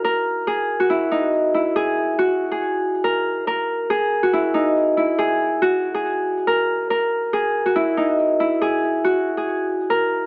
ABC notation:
X:1
M:4/4
L:1/16
Q:1/4=140
K:Gbmix
V:1 name="Harp"
B4 A3 G F2 E4 F2 | A4 G3 A4- A B4 | B4 A3 G F2 E4 F2 | A4 G3 A4- A B4 |
B4 A3 G F2 E4 F2 | A4 G3 A4- A B4 |]